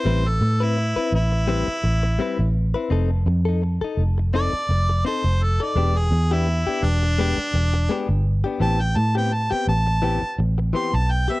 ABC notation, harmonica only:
X:1
M:4/4
L:1/16
Q:"Swing 16ths" 1/4=84
K:Am
V:1 name="Harmonica"
c A2 E3 E8 z2 | z8 d4 c2 A d- | d ^G2 E3 D8 z2 | a g a g a g a4 z2 c' a g e |]